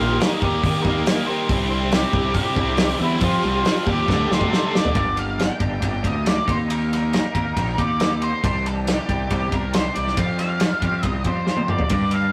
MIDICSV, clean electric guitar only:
0, 0, Header, 1, 2, 480
1, 0, Start_track
1, 0, Tempo, 433839
1, 1657, Time_signature, 4, 2, 24, 8
1, 13633, End_track
2, 0, Start_track
2, 0, Title_t, "Clean electric guitar"
2, 0, Program_c, 0, 27
2, 5474, Note_on_c, 0, 43, 87
2, 5484, Note_on_c, 0, 50, 87
2, 5485, Note_on_c, 0, 55, 85
2, 5491, Note_on_c, 0, 58, 92
2, 5494, Note_on_c, 0, 62, 103
2, 5499, Note_on_c, 0, 67, 90
2, 5709, Note_off_c, 0, 67, 0
2, 5712, Note_off_c, 0, 62, 0
2, 5713, Note_on_c, 0, 67, 72
2, 5726, Note_on_c, 0, 62, 62
2, 5729, Note_off_c, 0, 58, 0
2, 5734, Note_on_c, 0, 58, 62
2, 5737, Note_off_c, 0, 55, 0
2, 5742, Note_on_c, 0, 55, 56
2, 5955, Note_off_c, 0, 55, 0
2, 5959, Note_on_c, 0, 55, 73
2, 5960, Note_off_c, 0, 43, 0
2, 5965, Note_off_c, 0, 50, 0
2, 5968, Note_off_c, 0, 62, 0
2, 5969, Note_off_c, 0, 58, 0
2, 5973, Note_on_c, 0, 58, 73
2, 5981, Note_on_c, 0, 62, 78
2, 5982, Note_off_c, 0, 67, 0
2, 5987, Note_on_c, 0, 67, 71
2, 6188, Note_off_c, 0, 62, 0
2, 6188, Note_off_c, 0, 67, 0
2, 6193, Note_on_c, 0, 67, 93
2, 6201, Note_on_c, 0, 62, 89
2, 6206, Note_off_c, 0, 58, 0
2, 6210, Note_on_c, 0, 58, 78
2, 6211, Note_off_c, 0, 55, 0
2, 6215, Note_on_c, 0, 55, 81
2, 6221, Note_on_c, 0, 50, 80
2, 6223, Note_on_c, 0, 43, 75
2, 6429, Note_off_c, 0, 55, 0
2, 6429, Note_off_c, 0, 58, 0
2, 6434, Note_on_c, 0, 55, 69
2, 6438, Note_off_c, 0, 62, 0
2, 6443, Note_on_c, 0, 58, 67
2, 6452, Note_on_c, 0, 62, 69
2, 6455, Note_off_c, 0, 67, 0
2, 6459, Note_on_c, 0, 67, 76
2, 6666, Note_off_c, 0, 67, 0
2, 6668, Note_off_c, 0, 62, 0
2, 6671, Note_on_c, 0, 67, 87
2, 6674, Note_off_c, 0, 58, 0
2, 6680, Note_off_c, 0, 50, 0
2, 6681, Note_on_c, 0, 62, 80
2, 6687, Note_off_c, 0, 55, 0
2, 6688, Note_on_c, 0, 58, 76
2, 6691, Note_on_c, 0, 55, 79
2, 6692, Note_off_c, 0, 43, 0
2, 6693, Note_on_c, 0, 50, 68
2, 6705, Note_on_c, 0, 43, 68
2, 6909, Note_off_c, 0, 55, 0
2, 6911, Note_off_c, 0, 58, 0
2, 6914, Note_on_c, 0, 55, 75
2, 6917, Note_off_c, 0, 62, 0
2, 6924, Note_on_c, 0, 58, 75
2, 6930, Note_on_c, 0, 62, 81
2, 6938, Note_off_c, 0, 67, 0
2, 6943, Note_on_c, 0, 67, 73
2, 7152, Note_off_c, 0, 58, 0
2, 7153, Note_off_c, 0, 67, 0
2, 7155, Note_off_c, 0, 62, 0
2, 7157, Note_off_c, 0, 50, 0
2, 7158, Note_on_c, 0, 67, 81
2, 7163, Note_off_c, 0, 43, 0
2, 7164, Note_on_c, 0, 63, 83
2, 7174, Note_on_c, 0, 58, 79
2, 7183, Note_off_c, 0, 55, 0
2, 7187, Note_on_c, 0, 51, 74
2, 7379, Note_off_c, 0, 51, 0
2, 7389, Note_off_c, 0, 58, 0
2, 7392, Note_on_c, 0, 51, 91
2, 7399, Note_off_c, 0, 63, 0
2, 7402, Note_on_c, 0, 58, 85
2, 7412, Note_on_c, 0, 63, 92
2, 7417, Note_off_c, 0, 67, 0
2, 7422, Note_on_c, 0, 67, 101
2, 7638, Note_off_c, 0, 67, 0
2, 7642, Note_on_c, 0, 67, 68
2, 7643, Note_off_c, 0, 63, 0
2, 7656, Note_off_c, 0, 58, 0
2, 7657, Note_on_c, 0, 63, 66
2, 7669, Note_on_c, 0, 58, 58
2, 7863, Note_off_c, 0, 51, 0
2, 7877, Note_off_c, 0, 58, 0
2, 7877, Note_on_c, 0, 51, 68
2, 7880, Note_off_c, 0, 63, 0
2, 7890, Note_on_c, 0, 58, 69
2, 7893, Note_on_c, 0, 63, 74
2, 7901, Note_off_c, 0, 67, 0
2, 7905, Note_on_c, 0, 67, 83
2, 8118, Note_off_c, 0, 63, 0
2, 8120, Note_off_c, 0, 67, 0
2, 8124, Note_on_c, 0, 67, 89
2, 8127, Note_off_c, 0, 58, 0
2, 8131, Note_on_c, 0, 63, 77
2, 8140, Note_on_c, 0, 58, 86
2, 8142, Note_off_c, 0, 51, 0
2, 8155, Note_on_c, 0, 51, 70
2, 8355, Note_off_c, 0, 51, 0
2, 8362, Note_off_c, 0, 58, 0
2, 8368, Note_on_c, 0, 51, 75
2, 8373, Note_off_c, 0, 63, 0
2, 8375, Note_on_c, 0, 58, 78
2, 8387, Note_on_c, 0, 63, 77
2, 8390, Note_off_c, 0, 67, 0
2, 8394, Note_on_c, 0, 67, 84
2, 8603, Note_off_c, 0, 67, 0
2, 8605, Note_off_c, 0, 63, 0
2, 8608, Note_on_c, 0, 67, 91
2, 8613, Note_off_c, 0, 58, 0
2, 8618, Note_on_c, 0, 63, 81
2, 8623, Note_off_c, 0, 51, 0
2, 8626, Note_on_c, 0, 58, 71
2, 8637, Note_on_c, 0, 51, 68
2, 8840, Note_off_c, 0, 51, 0
2, 8852, Note_off_c, 0, 58, 0
2, 8854, Note_on_c, 0, 51, 70
2, 8859, Note_off_c, 0, 63, 0
2, 8865, Note_on_c, 0, 58, 83
2, 8872, Note_on_c, 0, 63, 82
2, 8878, Note_off_c, 0, 67, 0
2, 8882, Note_on_c, 0, 67, 85
2, 9083, Note_off_c, 0, 67, 0
2, 9087, Note_on_c, 0, 67, 71
2, 9094, Note_off_c, 0, 63, 0
2, 9103, Note_off_c, 0, 58, 0
2, 9107, Note_on_c, 0, 63, 59
2, 9116, Note_on_c, 0, 58, 57
2, 9321, Note_off_c, 0, 51, 0
2, 9327, Note_off_c, 0, 63, 0
2, 9332, Note_off_c, 0, 58, 0
2, 9332, Note_on_c, 0, 48, 86
2, 9339, Note_on_c, 0, 52, 90
2, 9345, Note_on_c, 0, 55, 102
2, 9352, Note_on_c, 0, 62, 92
2, 9356, Note_off_c, 0, 67, 0
2, 9360, Note_on_c, 0, 67, 106
2, 9569, Note_off_c, 0, 67, 0
2, 9573, Note_on_c, 0, 67, 71
2, 9575, Note_off_c, 0, 62, 0
2, 9589, Note_on_c, 0, 62, 62
2, 9598, Note_off_c, 0, 55, 0
2, 9603, Note_on_c, 0, 55, 54
2, 9811, Note_off_c, 0, 52, 0
2, 9815, Note_off_c, 0, 48, 0
2, 9822, Note_off_c, 0, 55, 0
2, 9824, Note_on_c, 0, 52, 70
2, 9827, Note_on_c, 0, 55, 83
2, 9829, Note_off_c, 0, 62, 0
2, 9842, Note_on_c, 0, 62, 78
2, 9845, Note_off_c, 0, 67, 0
2, 9850, Note_on_c, 0, 67, 83
2, 10058, Note_off_c, 0, 62, 0
2, 10059, Note_off_c, 0, 67, 0
2, 10063, Note_on_c, 0, 67, 98
2, 10071, Note_off_c, 0, 52, 0
2, 10071, Note_off_c, 0, 55, 0
2, 10071, Note_on_c, 0, 62, 88
2, 10075, Note_on_c, 0, 55, 86
2, 10084, Note_on_c, 0, 52, 78
2, 10088, Note_on_c, 0, 48, 73
2, 10300, Note_off_c, 0, 52, 0
2, 10314, Note_on_c, 0, 52, 69
2, 10317, Note_off_c, 0, 62, 0
2, 10318, Note_off_c, 0, 55, 0
2, 10322, Note_on_c, 0, 55, 78
2, 10330, Note_off_c, 0, 67, 0
2, 10330, Note_on_c, 0, 62, 77
2, 10335, Note_on_c, 0, 67, 75
2, 10535, Note_off_c, 0, 62, 0
2, 10535, Note_off_c, 0, 67, 0
2, 10539, Note_on_c, 0, 67, 80
2, 10547, Note_off_c, 0, 55, 0
2, 10548, Note_off_c, 0, 52, 0
2, 10548, Note_on_c, 0, 62, 80
2, 10551, Note_on_c, 0, 55, 79
2, 10554, Note_off_c, 0, 48, 0
2, 10561, Note_on_c, 0, 52, 78
2, 10567, Note_on_c, 0, 48, 71
2, 10770, Note_off_c, 0, 52, 0
2, 10784, Note_on_c, 0, 52, 66
2, 10789, Note_off_c, 0, 62, 0
2, 10791, Note_off_c, 0, 55, 0
2, 10796, Note_on_c, 0, 55, 73
2, 10802, Note_on_c, 0, 62, 84
2, 10803, Note_off_c, 0, 67, 0
2, 10808, Note_on_c, 0, 67, 91
2, 11028, Note_off_c, 0, 67, 0
2, 11033, Note_on_c, 0, 67, 68
2, 11034, Note_off_c, 0, 48, 0
2, 11037, Note_off_c, 0, 62, 0
2, 11050, Note_on_c, 0, 62, 66
2, 11052, Note_off_c, 0, 55, 0
2, 11056, Note_on_c, 0, 55, 53
2, 11248, Note_off_c, 0, 52, 0
2, 11253, Note_on_c, 0, 53, 80
2, 11259, Note_off_c, 0, 55, 0
2, 11261, Note_off_c, 0, 62, 0
2, 11263, Note_on_c, 0, 55, 90
2, 11277, Note_on_c, 0, 60, 96
2, 11278, Note_off_c, 0, 67, 0
2, 11283, Note_on_c, 0, 67, 99
2, 11494, Note_off_c, 0, 67, 0
2, 11498, Note_on_c, 0, 67, 63
2, 11501, Note_off_c, 0, 60, 0
2, 11514, Note_on_c, 0, 60, 65
2, 11526, Note_off_c, 0, 55, 0
2, 11530, Note_on_c, 0, 55, 57
2, 11713, Note_off_c, 0, 53, 0
2, 11726, Note_on_c, 0, 53, 72
2, 11736, Note_off_c, 0, 60, 0
2, 11738, Note_off_c, 0, 55, 0
2, 11742, Note_on_c, 0, 55, 84
2, 11749, Note_on_c, 0, 60, 82
2, 11750, Note_off_c, 0, 67, 0
2, 11755, Note_on_c, 0, 67, 74
2, 11980, Note_off_c, 0, 67, 0
2, 11982, Note_off_c, 0, 60, 0
2, 11985, Note_on_c, 0, 67, 89
2, 11995, Note_on_c, 0, 60, 85
2, 11998, Note_off_c, 0, 53, 0
2, 11999, Note_off_c, 0, 55, 0
2, 12004, Note_on_c, 0, 55, 81
2, 12011, Note_on_c, 0, 53, 69
2, 12197, Note_off_c, 0, 53, 0
2, 12210, Note_on_c, 0, 53, 75
2, 12216, Note_off_c, 0, 55, 0
2, 12220, Note_on_c, 0, 55, 66
2, 12221, Note_off_c, 0, 60, 0
2, 12234, Note_on_c, 0, 60, 73
2, 12236, Note_off_c, 0, 67, 0
2, 12241, Note_on_c, 0, 67, 75
2, 12449, Note_off_c, 0, 67, 0
2, 12453, Note_on_c, 0, 67, 78
2, 12456, Note_off_c, 0, 60, 0
2, 12469, Note_on_c, 0, 60, 69
2, 12471, Note_off_c, 0, 55, 0
2, 12472, Note_off_c, 0, 53, 0
2, 12475, Note_on_c, 0, 55, 77
2, 12485, Note_on_c, 0, 53, 62
2, 12679, Note_off_c, 0, 53, 0
2, 12692, Note_on_c, 0, 53, 71
2, 12698, Note_off_c, 0, 60, 0
2, 12699, Note_off_c, 0, 55, 0
2, 12704, Note_on_c, 0, 55, 69
2, 12712, Note_on_c, 0, 60, 76
2, 12718, Note_off_c, 0, 67, 0
2, 12723, Note_on_c, 0, 67, 81
2, 12932, Note_off_c, 0, 67, 0
2, 12937, Note_on_c, 0, 67, 71
2, 12940, Note_off_c, 0, 60, 0
2, 12953, Note_on_c, 0, 60, 65
2, 12961, Note_off_c, 0, 55, 0
2, 12965, Note_on_c, 0, 55, 60
2, 13164, Note_off_c, 0, 53, 0
2, 13175, Note_off_c, 0, 60, 0
2, 13180, Note_on_c, 0, 43, 96
2, 13184, Note_on_c, 0, 50, 87
2, 13192, Note_off_c, 0, 55, 0
2, 13192, Note_on_c, 0, 55, 88
2, 13197, Note_on_c, 0, 58, 88
2, 13201, Note_on_c, 0, 62, 97
2, 13205, Note_off_c, 0, 67, 0
2, 13209, Note_on_c, 0, 67, 88
2, 13414, Note_off_c, 0, 62, 0
2, 13417, Note_off_c, 0, 67, 0
2, 13421, Note_on_c, 0, 67, 62
2, 13428, Note_on_c, 0, 62, 61
2, 13434, Note_off_c, 0, 58, 0
2, 13439, Note_on_c, 0, 58, 58
2, 13444, Note_off_c, 0, 55, 0
2, 13449, Note_on_c, 0, 55, 60
2, 13633, Note_off_c, 0, 43, 0
2, 13633, Note_off_c, 0, 50, 0
2, 13633, Note_off_c, 0, 55, 0
2, 13633, Note_off_c, 0, 58, 0
2, 13633, Note_off_c, 0, 62, 0
2, 13633, Note_off_c, 0, 67, 0
2, 13633, End_track
0, 0, End_of_file